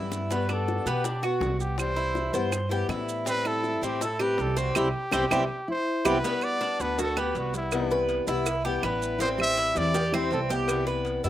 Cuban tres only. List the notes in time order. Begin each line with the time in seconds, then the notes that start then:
Already playing: E4
0.32 B3
0.49 D4
0.87 B3
1.05 D4
1.23 F#4
1.96 E4
2.34 C5
2.71 G4
2.89 E4
3.27 C4
3.45 E4
3.83 C4
4.02 E4
4.20 G4
4.57 C4
4.75 C4 E4 G4
5.12 C4 E4 G4
5.31 C4 E4 G4
6.05 C4 E4 G4
6.24 B3
6.61 D4
6.99 F#4
7.17 B3
7.91 B4
8.28 E4
8.65 G4
8.83 B3
9.20 C4
9.57 E4
9.94 G4
10.14 C4
10.50 G4
10.87 B4
11.24 E4